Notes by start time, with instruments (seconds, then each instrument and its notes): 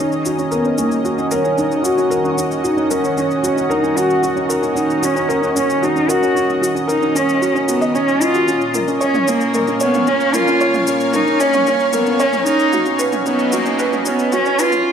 Already playing: analog synth pad D#3 C#4 G#4 D#5, cello D#4
0.00 felt piano C#4
0.12 shaker
0.25 felt piano F#4, shaker
0.38 felt piano C#4, shaker
0.51 cello B3, felt piano A#4, shaker
0.65 felt piano C#4, shaker
0.78 cello A#3, felt piano C#4, shaker
0.92 shaker
1.04 analog synth pad F#4, felt piano F#4, shaker
1.18 felt piano C#4, shaker
1.31 cello C#4, felt piano A#4, shaker
1.44 felt piano C#4, shaker
1.57 felt piano C#4, cello D#4, shaker
1.71 shaker
1.85 felt piano F#4, cello F#4, shaker
1.98 felt piano C#4, shaker
2.10 felt piano A#4, shaker
2.24 felt piano C#4, shaker
2.37 felt piano C#4, shaker
2.52 shaker
2.63 cello D#4, felt piano F#4, shaker
2.77 felt piano C#4, shaker
2.91 cello C#4, felt piano A#4, shaker
3.04 felt piano C#4, shaker
3.17 felt piano C#4, shaker
3.31 shaker
3.43 cello C#4, felt piano F#4, shaker
3.56 felt piano C#4, shaker
3.70 cello D#4, felt piano A#4, shaker
3.83 felt piano C#4, shaker
3.96 felt piano C#4, cello F#4, shaker
4.10 shaker
4.23 felt piano F#4, shaker
4.36 felt piano C#4, shaker
4.49 felt piano A#4, shaker
4.62 felt piano C#4, shaker
4.75 felt piano C#4, cello D#4, shaker
4.90 shaker
5.02 cello C#4, felt piano F#4, shaker
5.15 felt piano C#4, shaker
5.29 felt piano A#4, shaker
5.42 felt piano C#4, shaker
5.56 felt piano C#4, cello C#4, shaker
5.70 shaker
5.82 cello D#4, felt piano F#4, shaker
5.96 felt piano C#4, shaker
6.08 cello F#4, felt piano A#4, shaker
6.22 felt piano C#4, shaker
6.35 felt piano C#4, shaker
6.50 shaker
6.62 felt piano F#4, shaker
6.75 felt piano C#4, shaker
6.88 cello D#4, felt piano A#4, shaker
7.02 felt piano C#4, shaker
7.15 felt piano C#4, cello C#4, shaker
7.29 shaker
7.41 felt piano F#4, shaker
7.54 felt piano C#4, shaker
7.68 cello B3, felt piano F#4, shaker
7.81 felt piano D#5, shaker
7.95 felt piano C#4, cello C#4, shaker
8.08 shaker
8.21 felt piano C#4, cello F4, shaker
8.34 felt piano F#4, shaker
8.48 analog synth pad A#2, felt piano C#4, shaker
8.61 shaker
8.74 felt piano A#4, mid tom, shaker
8.79 analog synth pad C#5
8.88 felt piano C#4, shaker
9.01 cello C#4, felt piano C#5, shaker
9.14 analog synth pad A#3, felt piano C#4, mid tom, shaker
9.28 cello A#3, felt piano C#4, shaker
9.41 shaker
9.54 felt piano A#4, mid tom, shaker
9.67 felt piano C#4, analog synth pad F5, shaker
9.80 cello B3, felt piano C#5, shaker
9.94 felt piano C#4, mid tom, shaker
10.07 felt piano C#4, cello C#4, shaker
10.20 shaker
10.34 cello F4, felt piano A#4, mid tom, shaker
10.48 felt piano C#4, shaker
10.61 felt piano C#5, shaker
10.74 felt piano C#4, mid tom, shaker
10.87 felt piano C#4, shaker
11.00 shaker
11.13 cello D#4, felt piano A#4, mid tom, shaker
11.27 felt piano C#4, shaker
11.40 cello C#4, felt piano C#5, shaker
11.53 felt piano C#4, mid tom, shaker
11.67 felt piano C#4, shaker
11.80 shaker
11.93 cello B3, felt piano A#4, mid tom, shaker
12.06 felt piano C#4, shaker
12.19 cello C#4, felt piano C#5, shaker
12.33 felt piano C#4, mid tom, shaker
12.46 felt piano C#4, cello D#4, shaker
12.59 shaker
12.72 analog synth pad B2, felt piano F#4, mid tom, shaker
12.86 felt piano C#4, shaker
12.99 felt piano B4, shaker
13.11 felt piano C#4, analog synth pad D#4, mid tom, shaker
13.17 analog synth pad F#3
13.26 cello B3, felt piano C#4, shaker
13.39 shaker
13.52 cello A#3, felt piano F#4, mid tom, shaker
13.66 felt piano C#4, shaker
13.79 felt piano B4, shaker
13.93 felt piano C#4, mid tom, shaker
14.06 cello B3, felt piano C#4, shaker
14.19 shaker
14.32 cello C#4, felt piano F#4, mid tom, shaker
14.46 felt piano C#4, shaker
14.59 cello F4, felt piano B4, shaker
14.72 felt piano C#4, mid tom, shaker